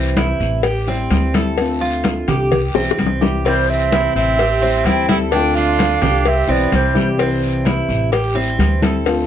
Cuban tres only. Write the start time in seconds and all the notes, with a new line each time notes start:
Already playing: C4
0.17 E4
0.64 G4
0.88 C4
1.34 A4
1.81 F4
2.28 G4
2.75 C4
3.21 G4
3.45 C4
3.92 E4
4.39 G4
4.62 C4
5.09 A4
5.55 F4
6.02 G4
6.49 C4
6.95 G4
7.19 C4
7.65 E4
8.12 G4
8.35 C4
8.82 A4